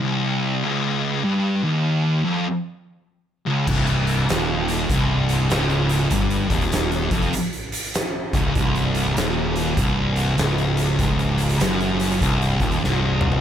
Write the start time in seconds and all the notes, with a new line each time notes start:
0.01 C2
0.63 C#2
1.24 G2
1.64 D#2
2.25 F2
3.46 C#2
3.67 C1 C2, kick, crash
3.87 closed hi-hat
4.07 closed hi-hat
4.29 D#1 D#2, snare, closed hi-hat
4.68 closed hi-hat
4.90 C1 C2, kick, closed hi-hat
5.29 closed hi-hat
5.50 C#1 C#2, snare, closed hi-hat
5.70 closed hi-hat
5.89 closed hi-hat
6.11 G1 G2, kick, closed hi-hat
6.30 closed hi-hat
6.50 D#1 D#2, kick, closed hi-hat
6.61 closed hi-hat
6.72 snare, closed hi-hat
6.92 closed hi-hat
7.11 F1 F2, kick, snare, closed hi-hat
7.22 closed hi-hat
7.33 closed hi-hat
7.53 closed hi-hat
7.72 closed hi-hat
7.83 closed hi-hat
7.94 snare, closed hi-hat
8.33 C#1 C#2, kick, closed hi-hat
8.55 C1 C2, kick, closed hi-hat
8.75 closed hi-hat
8.95 closed hi-hat
9.17 D#1 D#2, snare, closed hi-hat
9.56 closed hi-hat
9.77 C1 C2, kick, closed hi-hat
10.16 closed hi-hat
10.38 C#1 C#2, snare, closed hi-hat
10.58 closed hi-hat
10.77 closed hi-hat
10.99 C#1 C#2, kick, closed hi-hat
11.19 closed hi-hat
11.38 closed hi-hat
11.49 closed hi-hat
11.60 F#1 F#2, snare, closed hi-hat
11.80 closed hi-hat
12.00 snare, closed hi-hat
12.11 closed hi-hat
12.21 C1 C2, kick, closed hi-hat
12.42 closed hi-hat
12.60 D#1 D#2, kick, closed hi-hat
12.71 closed hi-hat
12.82 C1 C2, snare
13.21 mid tom
13.32 floor tom